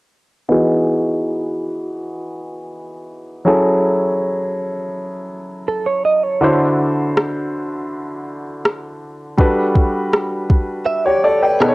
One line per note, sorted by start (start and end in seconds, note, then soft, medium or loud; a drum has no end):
0.49 3.41 E3 medium
0.49 3.42 B3 medium
0.49 3.42 D#4 medium
0.49 3.42 F#4 medium
0.49 3.43 G#4 medium
3.45 6.38 F#3 medium
3.45 6.38 C#4 medium
3.45 6.38 E4 medium
3.45 6.39 G#4 medium
3.45 6.39 A4 medium
5.68 5.86 A4 medium
5.86 6.04 C#5 medium
6.05 6.23 D#5 medium
6.23 6.58 C#5 medium
6.41 9.34 D3 medium
6.41 9.34 D4 medium
6.41 9.34 E4 medium
6.41 9.35 F#4 medium
6.41 9.35 C5 medium
7.17 cross-stick loud
8.65 cross-stick loud
9.37 11.56 G3 medium
9.37 11.56 D4 medium
9.37 10.84 F#4 medium
9.37 10.84 A4 medium
9.37 10.85 B4 medium
9.37 kick loud
9.75 kick medium
10.13 cross-stick loud
10.50 kick medium
10.86 11.05 E5 medium
11.05 11.23 G4 medium
11.05 11.23 C#5 medium
11.05 11.23 D5 medium
11.23 11.42 A4 medium
11.23 11.42 C#5 medium
11.23 11.41 D5 medium
11.42 11.59 B4 medium
11.42 11.75 D5 medium
11.42 11.75 G5 medium
11.60 11.75 B2 medium
11.60 11.75 B3 medium
11.60 11.75 D#4 medium
11.60 11.75 G#4 medium
11.60 11.75 A4 medium
11.60 11.68 B4 medium
11.60 cross-stick loud
11.68 11.75 C#5 medium